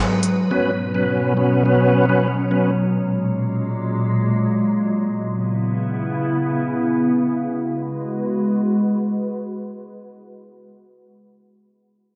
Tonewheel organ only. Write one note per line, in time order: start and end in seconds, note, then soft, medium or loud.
0.51 0.71 F#3 medium
0.51 0.71 B3 medium
0.51 0.71 C#4 medium
0.51 0.71 B4 loud
0.94 1.33 F#3 medium
0.94 1.34 B3 medium
0.94 1.34 C#4 medium
0.94 1.34 B4 medium
1.37 1.63 F#3 medium
1.37 1.63 B3 medium
1.37 1.63 C#4 medium
1.37 1.64 B4 medium
1.65 2.05 F#3 medium
1.65 2.05 B3 medium
1.65 2.06 C#4 medium
1.65 2.06 B4 loud
2.09 2.28 F#3 medium
2.09 2.28 B3 medium
2.09 2.28 C#4 medium
2.09 2.28 B4 medium
2.51 2.71 F#3 medium
2.51 2.71 B3 medium
2.51 2.71 C#4 medium
2.51 2.71 B4 medium